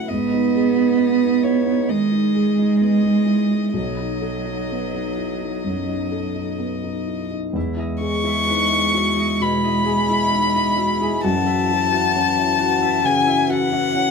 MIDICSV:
0, 0, Header, 1, 5, 480
1, 0, Start_track
1, 0, Key_signature, 4, "major"
1, 0, Tempo, 913242
1, 45, Time_signature, 4, 2, 24, 8
1, 1485, Tempo, 941915
1, 4365, Tempo, 910470
1, 7334, End_track
2, 0, Start_track
2, 0, Title_t, "Violin"
2, 0, Program_c, 0, 40
2, 0, Note_on_c, 0, 78, 56
2, 47, Note_on_c, 0, 75, 47
2, 55, Note_off_c, 0, 78, 0
2, 517, Note_off_c, 0, 75, 0
2, 520, Note_on_c, 0, 75, 54
2, 755, Note_on_c, 0, 73, 53
2, 763, Note_off_c, 0, 75, 0
2, 996, Note_on_c, 0, 75, 51
2, 1003, Note_off_c, 0, 73, 0
2, 1478, Note_off_c, 0, 75, 0
2, 1482, Note_on_c, 0, 75, 48
2, 1950, Note_off_c, 0, 75, 0
2, 1963, Note_on_c, 0, 75, 42
2, 3770, Note_off_c, 0, 75, 0
2, 4133, Note_on_c, 0, 85, 91
2, 4860, Note_on_c, 0, 83, 78
2, 4868, Note_off_c, 0, 85, 0
2, 5818, Note_off_c, 0, 83, 0
2, 5822, Note_on_c, 0, 81, 93
2, 6775, Note_on_c, 0, 80, 85
2, 6783, Note_off_c, 0, 81, 0
2, 7011, Note_on_c, 0, 78, 92
2, 7019, Note_off_c, 0, 80, 0
2, 7334, Note_off_c, 0, 78, 0
2, 7334, End_track
3, 0, Start_track
3, 0, Title_t, "Harp"
3, 0, Program_c, 1, 46
3, 3896, Note_on_c, 1, 64, 66
3, 4017, Note_on_c, 1, 75, 47
3, 4246, Note_off_c, 1, 64, 0
3, 4252, Note_on_c, 1, 64, 67
3, 4369, Note_on_c, 1, 71, 50
3, 4487, Note_off_c, 1, 71, 0
3, 4493, Note_on_c, 1, 71, 52
3, 4603, Note_off_c, 1, 64, 0
3, 4609, Note_on_c, 1, 64, 68
3, 4730, Note_off_c, 1, 75, 0
3, 4737, Note_on_c, 1, 75, 51
3, 4846, Note_off_c, 1, 64, 0
3, 4852, Note_on_c, 1, 64, 71
3, 4969, Note_off_c, 1, 75, 0
3, 4975, Note_on_c, 1, 75, 50
3, 5092, Note_on_c, 1, 68, 49
3, 5204, Note_off_c, 1, 64, 0
3, 5211, Note_on_c, 1, 64, 72
3, 5448, Note_off_c, 1, 75, 0
3, 5455, Note_on_c, 1, 75, 51
3, 5568, Note_off_c, 1, 64, 0
3, 5575, Note_on_c, 1, 64, 77
3, 5696, Note_off_c, 1, 68, 0
3, 5702, Note_on_c, 1, 68, 56
3, 5821, Note_on_c, 1, 66, 74
3, 5837, Note_off_c, 1, 75, 0
3, 5839, Note_off_c, 1, 68, 0
3, 5839, Note_off_c, 1, 71, 0
3, 5938, Note_on_c, 1, 76, 56
3, 6174, Note_off_c, 1, 66, 0
3, 6181, Note_on_c, 1, 66, 78
3, 6301, Note_on_c, 1, 73, 56
3, 6407, Note_off_c, 1, 73, 0
3, 6413, Note_on_c, 1, 73, 56
3, 6528, Note_off_c, 1, 66, 0
3, 6535, Note_on_c, 1, 66, 84
3, 6645, Note_off_c, 1, 76, 0
3, 6651, Note_on_c, 1, 76, 60
3, 6763, Note_off_c, 1, 66, 0
3, 6769, Note_on_c, 1, 66, 77
3, 6883, Note_off_c, 1, 76, 0
3, 6889, Note_on_c, 1, 76, 58
3, 7015, Note_on_c, 1, 69, 58
3, 7126, Note_off_c, 1, 66, 0
3, 7132, Note_on_c, 1, 66, 83
3, 7334, Note_off_c, 1, 64, 0
3, 7334, Note_off_c, 1, 66, 0
3, 7334, Note_off_c, 1, 69, 0
3, 7334, Note_off_c, 1, 73, 0
3, 7334, Note_off_c, 1, 76, 0
3, 7334, End_track
4, 0, Start_track
4, 0, Title_t, "Grand piano"
4, 0, Program_c, 2, 0
4, 0, Control_c, 2, 64, 127
4, 0, Note_on_c, 2, 49, 38
4, 0, Note_on_c, 2, 57, 39
4, 0, Note_on_c, 2, 64, 42
4, 0, Note_on_c, 2, 66, 34
4, 0, Note_on_c, 2, 69, 39
4, 54, Control_c, 2, 64, 0
4, 56, Note_off_c, 2, 49, 0
4, 56, Note_off_c, 2, 64, 0
4, 56, Note_off_c, 2, 69, 0
4, 56, Note_on_c, 2, 44, 53
4, 57, Note_off_c, 2, 57, 0
4, 57, Note_off_c, 2, 66, 0
4, 126, Control_c, 2, 64, 127
4, 174, Note_on_c, 2, 63, 40
4, 290, Note_on_c, 2, 68, 41
4, 358, Note_off_c, 2, 63, 0
4, 402, Note_on_c, 2, 63, 42
4, 475, Note_off_c, 2, 68, 0
4, 522, Note_on_c, 2, 59, 42
4, 590, Note_off_c, 2, 63, 0
4, 639, Note_on_c, 2, 63, 40
4, 709, Note_off_c, 2, 59, 0
4, 750, Note_on_c, 2, 64, 36
4, 828, Note_off_c, 2, 63, 0
4, 872, Note_off_c, 2, 64, 0
4, 872, Note_on_c, 2, 63, 41
4, 979, Note_off_c, 2, 44, 0
4, 992, Note_on_c, 2, 51, 41
4, 1066, Note_off_c, 2, 63, 0
4, 1113, Note_on_c, 2, 63, 40
4, 1188, Note_off_c, 2, 51, 0
4, 1234, Note_on_c, 2, 68, 39
4, 1310, Note_off_c, 2, 63, 0
4, 1359, Note_on_c, 2, 63, 37
4, 1433, Note_off_c, 2, 68, 0
4, 1477, Note_on_c, 2, 59, 39
4, 1555, Note_off_c, 2, 63, 0
4, 1588, Note_on_c, 2, 63, 38
4, 1671, Note_off_c, 2, 59, 0
4, 1707, Note_on_c, 2, 64, 31
4, 1786, Note_off_c, 2, 63, 0
4, 1833, Note_on_c, 2, 63, 36
4, 1834, Note_off_c, 2, 64, 0
4, 1948, Note_on_c, 2, 35, 46
4, 1957, Note_off_c, 2, 63, 0
4, 1970, Control_c, 2, 64, 0
4, 2040, Control_c, 2, 64, 127
4, 2078, Note_on_c, 2, 63, 34
4, 2193, Note_on_c, 2, 69, 33
4, 2274, Note_off_c, 2, 63, 0
4, 2315, Note_on_c, 2, 63, 34
4, 2392, Note_off_c, 2, 69, 0
4, 2447, Note_on_c, 2, 59, 33
4, 2514, Note_off_c, 2, 63, 0
4, 2562, Note_on_c, 2, 63, 35
4, 2640, Note_off_c, 2, 59, 0
4, 2682, Note_on_c, 2, 64, 29
4, 2757, Note_off_c, 2, 63, 0
4, 2804, Note_on_c, 2, 63, 34
4, 2805, Note_off_c, 2, 64, 0
4, 2900, Note_off_c, 2, 35, 0
4, 2922, Note_on_c, 2, 42, 32
4, 2998, Note_off_c, 2, 63, 0
4, 3039, Note_on_c, 2, 63, 34
4, 3117, Note_off_c, 2, 42, 0
4, 3163, Note_on_c, 2, 69, 33
4, 3236, Note_off_c, 2, 63, 0
4, 3284, Note_on_c, 2, 63, 32
4, 3359, Note_off_c, 2, 69, 0
4, 3404, Note_on_c, 2, 59, 33
4, 3480, Note_off_c, 2, 63, 0
4, 3530, Note_on_c, 2, 63, 31
4, 3601, Note_off_c, 2, 59, 0
4, 3644, Note_on_c, 2, 64, 29
4, 3725, Note_off_c, 2, 63, 0
4, 3769, Note_off_c, 2, 64, 0
4, 3769, Note_on_c, 2, 63, 33
4, 3884, Note_on_c, 2, 40, 53
4, 3891, Note_off_c, 2, 63, 0
4, 3902, Control_c, 2, 64, 0
4, 3976, Control_c, 2, 64, 127
4, 4002, Note_on_c, 2, 64, 43
4, 4126, Note_on_c, 2, 68, 47
4, 4195, Note_off_c, 2, 64, 0
4, 4243, Note_on_c, 2, 64, 46
4, 4316, Note_off_c, 2, 68, 0
4, 4363, Note_on_c, 2, 63, 46
4, 4436, Note_off_c, 2, 64, 0
4, 4483, Note_on_c, 2, 64, 45
4, 4560, Note_off_c, 2, 63, 0
4, 4610, Note_on_c, 2, 66, 40
4, 4681, Note_off_c, 2, 64, 0
4, 4731, Note_off_c, 2, 66, 0
4, 4735, Note_on_c, 2, 64, 47
4, 4826, Note_off_c, 2, 40, 0
4, 4856, Note_on_c, 2, 47, 45
4, 4926, Note_off_c, 2, 64, 0
4, 4988, Note_on_c, 2, 64, 47
4, 5046, Note_off_c, 2, 47, 0
4, 5101, Note_on_c, 2, 68, 46
4, 5171, Note_off_c, 2, 64, 0
4, 5221, Note_on_c, 2, 64, 47
4, 5288, Note_off_c, 2, 68, 0
4, 5335, Note_on_c, 2, 63, 47
4, 5408, Note_off_c, 2, 64, 0
4, 5461, Note_on_c, 2, 64, 50
4, 5526, Note_off_c, 2, 63, 0
4, 5580, Note_on_c, 2, 66, 43
4, 5651, Note_off_c, 2, 64, 0
4, 5698, Note_on_c, 2, 64, 49
4, 5699, Note_off_c, 2, 66, 0
4, 5818, Note_off_c, 2, 64, 0
4, 5825, Note_on_c, 2, 42, 64
4, 5826, Control_c, 2, 64, 0
4, 5919, Control_c, 2, 64, 127
4, 5938, Note_on_c, 2, 64, 48
4, 6066, Note_on_c, 2, 66, 52
4, 6129, Note_off_c, 2, 64, 0
4, 6188, Note_on_c, 2, 64, 54
4, 6253, Note_off_c, 2, 66, 0
4, 6305, Note_on_c, 2, 61, 53
4, 6373, Note_off_c, 2, 64, 0
4, 6423, Note_on_c, 2, 64, 53
4, 6490, Note_off_c, 2, 61, 0
4, 6537, Note_on_c, 2, 66, 47
4, 6608, Note_off_c, 2, 64, 0
4, 6654, Note_off_c, 2, 66, 0
4, 6655, Note_on_c, 2, 64, 52
4, 6753, Note_off_c, 2, 42, 0
4, 6771, Note_on_c, 2, 49, 51
4, 6843, Note_off_c, 2, 64, 0
4, 6891, Note_on_c, 2, 64, 55
4, 6960, Note_off_c, 2, 49, 0
4, 7006, Note_on_c, 2, 66, 53
4, 7080, Note_off_c, 2, 64, 0
4, 7130, Note_on_c, 2, 64, 50
4, 7197, Note_off_c, 2, 66, 0
4, 7245, Note_on_c, 2, 61, 52
4, 7318, Note_off_c, 2, 64, 0
4, 7334, Note_off_c, 2, 61, 0
4, 7334, End_track
5, 0, Start_track
5, 0, Title_t, "Cello"
5, 0, Program_c, 3, 42
5, 43, Note_on_c, 3, 59, 83
5, 997, Note_on_c, 3, 56, 72
5, 1005, Note_off_c, 3, 59, 0
5, 1955, Note_on_c, 3, 54, 59
5, 1963, Note_off_c, 3, 56, 0
5, 3407, Note_off_c, 3, 54, 0
5, 3891, Note_on_c, 3, 56, 56
5, 5794, Note_off_c, 3, 56, 0
5, 5821, Note_on_c, 3, 52, 62
5, 7334, Note_off_c, 3, 52, 0
5, 7334, End_track
0, 0, End_of_file